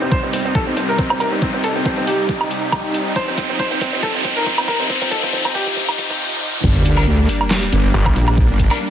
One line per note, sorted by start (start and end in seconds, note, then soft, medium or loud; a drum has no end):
0.00 6.60 C2 medium
0.00 6.60 C3 medium
0.00 3.12 G3 medium
0.00 0.07 C4 medium
0.00 6.60 D#4 medium
0.00 riser medium
0.12 0.18 C5 medium
0.12 kick loud
0.23 0.29 C4 medium
0.33 0.40 C4 medium
0.33 open hi-hat medium
0.45 0.51 C4 medium
0.55 0.62 A4 medium
0.55 kick loud
0.67 0.72 C4 medium
0.77 0.83 C4 medium
0.77 closed hi-hat medium
0.89 0.94 A#4 medium
0.98 1.05 C4 medium
0.98 kick loud
1.10 1.16 C4 medium
1.10 low woodblock medium
1.20 1.27 A#4 medium
1.20 closed hi-hat medium
1.20 low woodblock medium
1.32 1.38 C4 medium
1.42 1.49 C4 medium
1.42 kick loud
1.54 1.59 C4 medium
1.64 1.70 A4 medium
1.64 closed hi-hat medium
1.76 1.81 C4 medium
1.85 1.92 C4 medium
1.85 kick loud
1.98 2.03 C4 medium
2.07 3.08 G4 medium
2.07 open hi-hat loud
2.29 kick loud
2.41 low woodblock medium
2.51 closed hi-hat medium
2.72 kick loud
2.72 closed hi-hat soft
2.72 low woodblock medium
2.94 closed hi-hat medium
3.16 6.60 F3 medium
3.16 3.22 C5 loud
3.16 kick loud
3.28 3.33 C4 medium
3.38 3.44 C4 medium
3.38 kick loud
3.38 closed hi-hat medium
3.50 3.55 C4 medium
3.59 3.66 C5 medium
3.59 kick loud
3.71 3.77 C4 medium
3.81 3.88 C4 medium
3.81 kick loud
3.81 open hi-hat loud
3.93 3.98 C4 medium
4.03 4.09 A4 loud
4.03 kick loud
4.15 4.20 C4 medium
4.25 4.31 C4 medium
4.25 kick loud
4.25 closed hi-hat medium
4.36 4.42 A#4 loud
4.46 4.53 C4 medium
4.46 kick loud
4.58 4.64 C4 medium
4.58 low woodblock medium
4.68 4.74 A#4 medium
4.68 kick loud
4.68 closed hi-hat medium
4.68 low woodblock medium
4.80 4.85 C4 medium
4.90 4.96 C4 medium
4.90 kick loud
5.01 5.07 C4 medium
5.01 kick medium
5.11 5.18 A4 medium
5.11 kick loud
5.11 closed hi-hat medium
5.23 5.29 C4 medium
5.23 kick medium
5.33 5.40 C4 medium
5.33 kick loud
5.45 5.51 C4 medium
5.45 kick medium
5.45 low woodblock medium
5.55 6.20 G4 loud
5.55 kick loud
5.55 open hi-hat medium
5.67 kick medium
5.77 kick loud
5.89 kick medium
5.89 low woodblock medium
5.98 kick loud
5.98 closed hi-hat medium
6.10 kick medium
6.64 7.06 G1 loud
6.64 8.90 G3 medium
6.64 8.90 A#3 medium
6.64 8.90 D4 medium
6.64 kick loud
6.64 crash loud
6.64 sub drop medium
6.85 closed hi-hat medium
6.97 7.03 G3 medium
6.97 7.03 D4 medium
6.97 7.03 A#4 medium
6.97 low woodblock medium
7.07 7.27 D2 medium
7.29 open hi-hat medium
7.41 low woodblock medium
7.51 snare loud
7.51 clap medium
7.72 7.93 G1 medium
7.72 closed hi-hat medium
7.94 8.14 G1 loud
7.94 closed hi-hat soft
8.06 kick loud
8.06 low woodblock medium
8.16 8.48 A#1 loud
8.16 closed hi-hat medium
8.28 low woodblock medium
8.38 kick loud
8.49 8.69 G1 loud
8.59 kick medium
8.59 closed hi-hat medium
8.71 8.77 G3 medium
8.71 8.77 D4 medium
8.71 8.77 A#4 loud
8.71 low woodblock medium